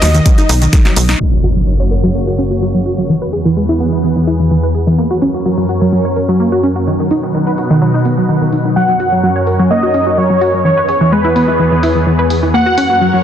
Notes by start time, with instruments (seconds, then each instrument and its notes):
Already playing: analog synth lead D#5
0.02 analog synth bass D#2, synth pluck F#4, snare, open hi-hat, shaker
0.14 synth pluck D#3, closed hi-hat, shaker
0.26 synth pluck F#3, kick, closed hi-hat, shaker
0.38 synth pluck D#4, closed hi-hat, shaker
0.49 analog synth bass B1, synth pluck D#4, open hi-hat, shaker
0.62 synth pluck D#3, closed hi-hat, shaker
0.73 synth pluck D#4, kick, snare, closed hi-hat, shaker
0.85 synth pluck F#3, snare, closed hi-hat, shaker
0.96 analog synth bass B1, synth pluck F#3, open hi-hat, shaker
1.09 synth pluck D#4, snare, closed hi-hat, shaker
1.20 analog synth pad F#2 C#3 A#3 F#4 C#5, synth pluck F#3, impact
1.33 synth pluck F#3
1.44 synth pluck F#4, open hi-hat
1.56 synth pluck F#3
1.67 synth pluck F#3
1.80 synth pluck C#5
1.91 synth pluck A#4, open hi-hat
2.04 synth pluck F#3
2.15 synth pluck A#3
2.27 synth pluck F#4
2.38 synth pluck C#4, open hi-hat
2.51 synth pluck F#4
2.62 synth pluck F#3
2.75 synth pluck F#3
2.86 synth pluck F#4, open hi-hat
2.98 synth pluck F#3
3.09 analog synth pad E2 E3 B3 G#4 B4, synth pluck E3
3.22 synth pluck B4
3.33 synth pluck G#4, open hi-hat
3.45 synth pluck E3
3.57 synth pluck G#3
3.69 synth pluck E4
3.80 synth pluck B3, open hi-hat
3.93 synth pluck E4
4.04 synth pluck E3
4.16 synth pluck E3
4.27 synth pluck E4, open hi-hat
4.40 synth pluck E3
4.51 synth pluck E3
4.63 synth pluck B4
4.75 synth pluck G#4, open hi-hat
4.87 synth pluck E3
4.98 analog synth pad F#2 F#3 C#4 A#4 C#5, synth pluck A#3
5.11 synth pluck F#4
5.22 synth pluck C#4, open hi-hat
5.34 synth pluck F#4
5.46 synth pluck F#3
5.58 synth pluck F#3
5.69 synth pluck F#4, open hi-hat
5.82 synth pluck F#3
5.93 synth pluck F#3
6.05 synth pluck C#5
6.16 synth pluck A#4, open hi-hat
6.29 synth pluck F#3
6.40 synth pluck A#3
6.52 synth pluck F#4
6.63 synth pluck C#4, open hi-hat
6.76 synth pluck F#4
6.87 analog synth pad B2 D#4 B4 F#5, synth pluck D#3
7.00 synth pluck D#3
7.11 synth pluck D#4, open hi-hat
7.23 synth pluck D#3
7.35 synth pluck D#3
7.47 synth pluck B4
7.58 synth pluck F#4, open hi-hat
7.70 synth pluck D#3
7.82 synth pluck F#3
7.94 synth pluck D#4
8.05 synth pluck B3, open hi-hat
8.18 synth pluck F#3
8.29 synth pluck D#3
8.41 synth pluck D#3
8.53 synth pluck D#3, open hi-hat
8.65 synth pluck D#3
8.76 analog synth pad F#2 C#4 A#4 C#5, synth pluck F#3, analog synth lead F#5
8.89 synth pluck F#3
9.00 synth pluck F#4, open hi-hat
9.12 synth pluck F#3
9.23 synth pluck F#3
9.36 synth pluck C#5
9.47 synth pluck A#4, open hi-hat
9.59 synth pluck F#3
9.71 synth pluck A#3, analog synth lead D#5
9.83 synth pluck F#4
9.94 synth pluck C#4, open hi-hat
10.07 synth pluck F#4
10.18 synth pluck F#3, analog synth lead C#5
10.30 synth pluck F#3
10.41 synth pluck F#4, open hi-hat
10.54 synth pluck F#3
10.65 analog synth pad E2 E3 B3 G#4 B4, synth pluck E3, analog synth lead C#5
10.77 synth pluck B4
10.89 synth pluck G#4, open hi-hat
11.01 synth pluck E3
11.12 synth pluck G#3, analog synth lead B4
11.25 synth pluck E4
11.36 synth pluck B3, open hi-hat
11.48 synth pluck E4
11.59 synth pluck E3
11.72 synth pluck E3
11.83 synth pluck E4, open hi-hat
11.95 synth pluck E3
12.07 synth pluck E3
12.19 synth pluck B4
12.30 synth pluck G#4, open hi-hat
12.43 synth pluck E3
12.54 analog synth pad F#2 F#3 C#4 A#4 C#5, synth pluck A#3, analog synth lead F#5
12.66 synth pluck F#4
12.78 synth pluck C#4, open hi-hat
12.90 synth pluck F#4
13.01 synth pluck F#3
13.14 synth pluck F#3